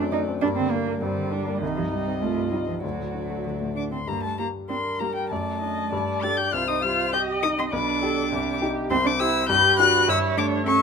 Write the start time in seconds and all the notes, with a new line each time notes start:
Already playing: F#2 A3 C4 D4 D5
0.00 F#3
0.12 D4 D#4
0.29 C4
0.41 G2 A#3 D4 D5
0.57 D3 C4
0.71 A#3 D4
0.87 A#3
1.01 G2 G3 C4 D5
1.17 D3
1.32 D4
1.47 A#3
1.61 C2 D#3 D#4 D#5
1.76 G2 F3
1.91 G3 D#4
2.07 C4
2.22 C2 A3 F4
2.37 G2
2.52 G3 D#4
2.67 F3 C4
2.83 D2 F#3 F#4 D5
2.99 A2
3.14 D4
3.30 A3
3.45 D2
3.61 A2
3.76 D4 D6
3.92 A3 C4 C6
4.08 G2 A#3 A#5
4.23 A3 A5
4.38 G3 A#3 A#5
4.69 C4 D4 A#4 C6
5.00 G3 A#3 A#5
5.15 G3 G5
5.30 F#2 A3 D5 A5
5.62 D4 D#5
5.92 G2 D5
6.23 D4 G4 A4 A6
6.37 G4 G6
6.53 C2 F4 C5 F6
6.68 D#4 D#6
6.82 G3 F4 F6
7.13 G4 D#5 G6
7.43 D#4 D#6
7.58 C4 C6
7.73 B1 D4 B4 D6
8.02 D4 G4 A4
8.32 C2 G4
8.62 D#4 G4
8.91 C2 C4 C5 C6
9.05 D4 D6
9.20 E4 G4 E6
9.49 G2 G4 B4 G6
9.79 D4 F#4 G4 F#6
10.08 G2 E4 C#5 E6
10.37 A3 D4 D6
10.66 C#4 A4 E5 C#6